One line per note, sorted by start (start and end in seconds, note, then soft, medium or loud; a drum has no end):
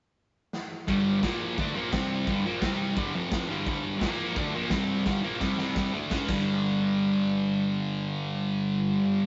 0.53 snare medium
0.88 1.23 G2 loud
0.88 1.21 D3 loud
0.88 1.22 G3 loud
0.88 kick loud
0.88 crash medium
1.22 1.57 A#2 medium
1.22 1.57 F3 loud
1.22 1.58 A#3 loud
1.22 kick loud
1.22 snare loud
1.22 crash medium
1.58 1.75 D3 medium
1.58 1.75 A3 medium
1.58 1.76 D4 medium
1.58 kick loud
1.58 crash medium
1.75 1.93 A#2 medium
1.75 1.94 F3 medium
1.75 1.95 A#3 loud
1.93 2.27 C3 medium
1.93 2.27 G3 medium
1.93 2.28 C4 loud
1.93 kick loud
1.93 snare loud
1.93 crash medium
2.27 2.44 G2 loud
2.27 2.45 D3 loud
2.27 2.45 G3 loud
2.27 kick loud
2.27 crash medium
2.45 2.62 A#2 loud
2.45 2.63 F3 loud
2.45 2.63 A#3 loud
2.62 2.96 C3 loud
2.62 2.97 G3 loud
2.62 2.97 C4 loud
2.62 kick loud
2.62 snare loud
2.62 crash medium
2.96 3.13 G2 medium
2.96 3.14 D3 medium
2.96 3.15 G3 loud
2.96 kick loud
2.96 crash medium
3.14 3.48 F2 medium
3.14 3.49 C3 loud
3.14 3.49 F3 loud
3.32 kick loud
3.32 snare loud
3.32 crash medium
3.48 3.65 G2 loud
3.48 3.66 D3 medium
3.48 3.67 G3 loud
3.66 4.01 G2 loud
3.66 4.01 D3 loud
3.66 4.02 G3 loud
3.66 kick loud
3.66 crash medium
4.01 4.36 A#2 loud
4.01 4.36 F3 loud
4.01 4.37 A#3 loud
4.01 kick loud
4.01 snare loud
4.01 crash medium
4.36 4.54 D3 medium
4.36 4.54 A3 medium
4.36 4.55 D4 medium
4.36 kick loud
4.36 crash medium
4.54 4.70 A#2 loud
4.54 4.71 F3 loud
4.54 4.72 A#3 loud
4.70 5.06 C3 medium
4.70 5.06 G3 loud
4.70 5.07 C4 loud
4.70 kick loud
4.70 snare loud
4.70 crash medium
5.05 5.23 G2 medium
5.05 5.22 D3 loud
5.05 5.23 G3 loud
5.05 kick loud
5.05 snare medium
5.22 5.39 A#2 medium
5.22 5.40 F3 loud
5.22 5.41 A#3 loud
5.40 5.57 C3 loud
5.40 5.58 G3 loud
5.40 5.58 C4 loud
5.40 kick loud
5.40 snare medium
5.58 5.93 C3 medium
5.58 5.94 G3 loud
5.58 5.94 C4 loud
5.58 snare medium
5.75 kick loud
5.75 snare medium
5.93 6.11 D3 medium
5.93 6.12 A3 loud
5.93 6.12 D4 loud
6.11 6.29 C#3 medium
6.11 6.30 G#3 loud
6.11 6.30 C#4 loud
6.11 kick loud
6.11 snare loud
6.28 9.26 G2 medium
6.28 9.26 D3 loud
6.28 9.26 G3 loud
6.28 kick loud
6.28 crash medium